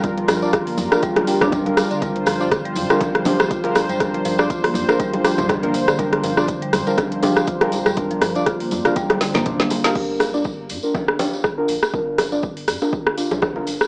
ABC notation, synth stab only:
X:1
M:4/4
L:1/16
Q:"Swing 16ths" 1/4=121
K:Gm
V:1 name="Synth stab"
[DFB]3 [DFd] z3 [DFB]3 [DFG]3 [DFB] z2 | [DFB]3 [DFd] z3 [DFB]3 [DFG]3 [DFB] z2 | [DFB]3 [DFd] z3 [DFB]3 [DFG]3 [DFB] z2 | [DFB]3 [DFd] z3 [DFB]3 [DFG]3 [DFB] z2 |
[DFB]3 [DFd] z3 [DFB]3 z2 [DFc]3 [DFB] | D3 [DFd] z3 [DFB]3 [DFG]3 [DFB] z2 | [DFB]3 [DFd] z3 [DFB]3 [DFG]3 [DFB] z2 |]